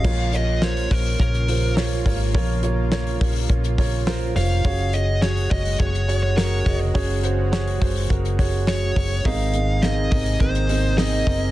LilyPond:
<<
  \new Staff \with { instrumentName = "Lead electric guitar" } { \time 4/4 \key ges \lydian \tempo 4 = 104 f''8 ees''8 des''8 bes'8 bes'4 r4 | r2. r8 f''8~ | f''8 ees''8 des''8 ees''8 des''8. des''16 des''8. r16 | r2. des''4 |
f''4 ees''8 ees''8 c''4 ees''4 | }
  \new Staff \with { instrumentName = "Upright piano" } { \time 4/4 \key ges \lydian <f' bes' des''>8 <f' bes' des''>8 <f' bes' c''>8 <f' bes' des''>8 <f' bes' des''>8 <f' bes' c''>8 <f' bes' des''>8 <f' bes' des''>8 | <f' bes' des''>8 <f' bes' des''>8 <f' bes' des''>8 <f' bes' des''>8 <f' bes' des''>8 <f' bes' des''>8 <f' bes' c''>8 <f' bes' des''>8 | <ges' aes' des''>8 <ges' aes' des''>8 <ges' aes' des''>8 <ges' aes' des''>8 <ges' aes' des''>8 <ges' aes' des''>8 <ges' aes' bes'>8 <ges' aes' ees''>8 | <ges' aes' des''>8 <ges' aes' c''>8 <ges' aes' des''>8 <ges' aes' c''>8 <ges' aes' bes'>8 <ges' aes' des''>8 <ges' aes' des''>8 <ges' aes' des''>8 |
<c' ees' aes' bes' ees''>8 <c' ees' aes' bes' ees''>8 <c' ees' aes' bes' f''>8 <c' ees' bes' ees''>8 <c' ees' aes' bes' ees''>8 <c' ees' aes' bes' ees''>8 <c' ees' aes' bes' ees''>8 <c' ees' aes' bes' c''>8 | }
  \new Staff \with { instrumentName = "Upright piano" } { \clef bass \time 4/4 \key ges \lydian <bes, f>4. r2 r8 | <bes, f>4. r2 r8 | des4. r2 r8 | des4. r2 r8 |
<aes, ees>4. r2 r8 | }
  \new Staff \with { instrumentName = "Analog synth pad" } { \time 4/4 \key ges \lydian <des bes f'>1~ | <des bes f'>1 | <des aes ges'>1~ | <des aes ges'>1 |
<c bes aes'>1 | }
  \new Staff \with { instrumentName = "Fingered electric bass" } { \clef bass \time 4/4 \key ges \lydian bes,,4. bes,,8 bes,,4. aes,,8 | bes,,4. bes,,8 bes,,4. f,,8 | r4. ges,,8 ges,,4. f,,8 | r4. ges,,8 ges,,4. ges,,8 |
aes,,4. aes,,8 aes,,4. ges,,8 | }
  \new DrumStaff \with { instrumentName = "Drums" } \drummode { \time 4/4 <cymc bd>8 <hho hhp>8 <hho hhp sn>16 hho16 <hho hhp bd>16 <hho hhp>16 <hho hhp bd>16 hhp16 <hho hhp>8 <hho hhp sn>8 <hho hhp bd>8 | <hho hhp bd>8 <hho hhp>8 <hho hhp sn>16 hho16 <hho hhp bd>16 <hho hhp>16 <hho hhp bd>16 hhp16 <hho hhp bd>8 <hho hhp sn>8 <hho hhp sn>8 | <hho hhp bd>8 <hho hhp>8 <hho hhp sn>16 hho16 <hho hhp bd>16 <hho hhp>16 <hho hhp bd>16 hhp16 <hho hhp>8 <hho hhp sn>8 <hho hhp bd sn>8 | <hho hhp bd>8 <hho hhp>8 <hho hhp sn>16 hho16 <hho hhp bd>16 <hho hhp>16 <hho hhp bd>16 hhp16 <hho hhp bd>8 <hho hhp sn>8 <hho hhp bd>8 |
<hho hhp bd>8 <hho hhp>8 <hho hhp sn>8 <hho hhp bd>16 hho16 <hho hhp bd>16 hhp16 <hho hhp>8 <hho hhp sn>8 <hho hhp bd>8 | }
>>